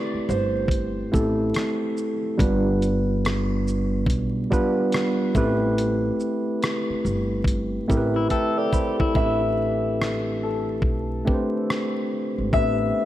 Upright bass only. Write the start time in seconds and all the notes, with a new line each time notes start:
0.14 muted upright bass stroke
0.29 G1
1.14 A1
2.40 G1
4.07 B1
5.35 A1
6.90 muted upright bass stroke
7.05 G1
7.90 A1
9.15 A1
10.82 B1
12.38 G#1
12.53 A1